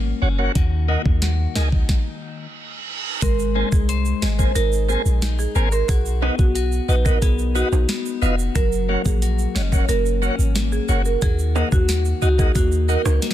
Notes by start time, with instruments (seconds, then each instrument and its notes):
Already playing: 808-style bass G#1, clean electric guitar F#3 A#3 C#4 F#4
0.22 808-style bass F#1, tonewheel organ C#4 F#4, clean electric guitar C#4
0.39 tonewheel organ A#3 C#4 F#4
0.55 808-style bass D#2, clean electric guitar D#3 F#4, kick, closed hi-hat
0.88 tonewheel organ A#3 D#4 F#4, clean electric guitar A#3
1.06 808-style bass D#2, kick
1.22 clean electric guitar F#4, snare, closed hi-hat
1.55 808-style bass C#2, tonewheel organ A#3 D#4 G#4, clean electric guitar D#4, snare
1.72 kick
1.89 kick, snare, reverse cymbal
3.22 808-style bass G#1, clean electric guitar G#3 C5, marimba A#4, kick, closed hi-hat, shaker
3.39 shaker
3.55 tonewheel organ A#3 C4 G#4, clean electric guitar D#4
3.72 808-style bass C2, marimba G#4, kick, shaker
3.89 clean electric guitar C5, closed hi-hat, shaker
4.05 shaker
4.22 808-style bass G#1, tonewheel organ C4 G#4, clean electric guitar G#4, marimba D#5, snare, shaker
4.39 tonewheel organ A#3 C4 G#4, marimba C5, kick, shaker
4.55 808-style bass G#1, clean electric guitar D#4, marimba A#4, closed hi-hat, shaker
4.72 shaker
4.89 tonewheel organ A#3 C4 G#4, clean electric guitar G#4, shaker
5.05 808-style bass A#1, shaker
5.22 clean electric guitar D#4, snare, closed hi-hat, shaker
5.39 marimba G#4, shaker
5.55 808-style bass G#1, tonewheel organ A#3 C4 G#4, clean electric guitar A#4, shaker
5.72 marimba A#4, clean electric guitar C5, shaker
5.89 808-style bass B1, clean electric guitar F#4, marimba G#4, kick, closed hi-hat, shaker
6.06 shaker
6.22 tonewheel organ B3 D#4 F#4, clean electric guitar B3, high timbale
6.39 808-style bass B1, marimba F#4, kick, shaker
6.55 clean electric guitar F#4, closed hi-hat, shaker
6.72 shaker
6.88 808-style bass A#1, tonewheel organ D#4 F#4, clean electric guitar D#4, marimba B4, shaker
7.05 tonewheel organ B3 D#4 F#4, marimba A#4, kick, shaker
7.22 808-style bass B1, clean electric guitar B3, marimba G#4, kick, closed hi-hat, shaker
7.39 shaker
7.55 tonewheel organ B3 D#4 F#4, clean electric guitar D#4, marimba F#4, shaker
7.72 808-style bass A#1, high timbale, shaker
7.89 clean electric guitar B3, snare, closed hi-hat, shaker
8.06 shaker
8.22 808-style bass F1, tonewheel organ B3 D#4 F4, clean electric guitar F#4, shaker
8.39 shaker
8.55 808-style bass F#1, clean electric guitar F#3 F#4, marimba A#4, kick, closed hi-hat, shaker
8.72 shaker
8.89 tonewheel organ A#3 C#4 F#4, clean electric guitar A#3
9.05 808-style bass A#1, marimba G#4, kick, shaker
9.22 clean electric guitar F#4, closed hi-hat, shaker
9.39 shaker
9.55 808-style bass F#1, tonewheel organ C#4 F#4, clean electric guitar C#4, marimba D#5, snare, shaker
9.72 tonewheel organ A#3 C#4 F#4, marimba C#5, kick, shaker
9.89 808-style bass F#1, clean electric guitar A#3, marimba A#4, closed hi-hat, shaker
10.06 shaker
10.22 tonewheel organ A#3 C#4 F#4, clean electric guitar C#4, shaker
10.39 808-style bass G#1, shaker
10.55 clean electric guitar A#3, snare, closed hi-hat, shaker
10.72 marimba G#4, shaker
10.89 808-style bass F#1, tonewheel organ A#3 C#4 F#4, clean electric guitar F#4, shaker
11.05 marimba A#4, shaker
11.22 808-style bass D#2, clean electric guitar D#3 F#4, marimba G#4, kick, closed hi-hat, shaker
11.39 shaker
11.55 tonewheel organ A#3 D#4 F#4, clean electric guitar A#3, high timbale, shaker
11.72 808-style bass D#2, marimba F#4, kick, shaker
11.89 clean electric guitar F#4, snare, closed hi-hat, shaker
12.05 shaker
12.22 808-style bass C#2, tonewheel organ D#4 F#4, clean electric guitar D#4, marimba F#4, shaker
12.38 tonewheel organ A#3 D#4 F#4, marimba G#4, kick, shaker
12.55 808-style bass D#2, clean electric guitar A#3, marimba F#4, kick, closed hi-hat, shaker
12.72 shaker
12.88 tonewheel organ A#3 D#4 F#4, clean electric guitar D#4, marimba A#4, shaker
13.05 808-style bass C#2, cross-stick, high timbale, shaker
13.22 clean electric guitar A#3, snare, closed hi-hat, shaker
13.31 snare